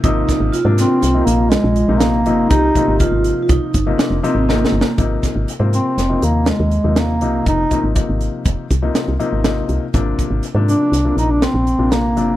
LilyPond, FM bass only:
\new Staff \with { instrumentName = "FM bass" } { \clef bass \time 5/4 \key aes \lydian \tempo 4 = 121 aes,,8 r16 aes,,16 r16 aes,8 r16 c,8 bes,,8. bes,,8 bes,,8. g,,8 | c,8 r16 aes,,8 aes,,8 r16 c,16 r16 g,,8 r16 f,,16 r16 aes,,8. g,,16 r16 | aes,,8 r16 aes,,16 r16 aes,8 r16 f,,8 ees,8. ees,8 ees,8. c,8 | f,,8 r16 aes,,8 aes,,8 r16 f,,16 r16 c,8 r16 c,16 r16 aes,,8. c,16 r16 |
aes,,8 r16 aes,,16 r16 aes,8 r16 c,8 bes,,8. bes,,8 bes,,8. g,,8 | }